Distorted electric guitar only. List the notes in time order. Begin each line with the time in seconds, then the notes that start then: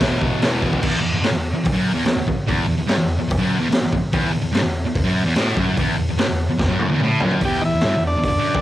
Already playing: B2 E3
0.42 E2 B2 E3
0.63 B2 E3
0.83 E2
1.02 E2
1.14 E2
1.23 G2
1.32 E2
1.54 muted distorted electric guitar stroke
1.64 E2
1.73 F#2
1.94 E2
2.06 muted distorted electric guitar stroke
2.17 muted distorted electric guitar stroke
2.27 muted distorted electric guitar stroke
2.47 E2
2.68 E2
2.78 E2
2.87 G2
2.98 E2
3.19 muted distorted electric guitar stroke
3.29 E2
3.38 F#2
3.60 E2
3.71 muted distorted electric guitar stroke
3.83 muted distorted electric guitar stroke
3.93 muted distorted electric guitar stroke
4.13 E2
4.34 E2
4.42 E2
4.53 G2
4.63 E2
4.85 muted distorted electric guitar stroke
4.96 E2
5.04 F#2
5.25 E2
5.36 A2
5.55 F#2
5.78 E2
5.98 E2
6.09 E2
6.18 G2
6.28 E2
6.50 muted distorted electric guitar stroke
6.58 E2
6.69 F#2
6.91 E2
7.02 A2
7.22 F#2
7.43 E2
7.64 E2
7.76 E2
7.85 G2
7.97 E2
8.17 muted distorted electric guitar stroke
8.28 E2
8.38 F#2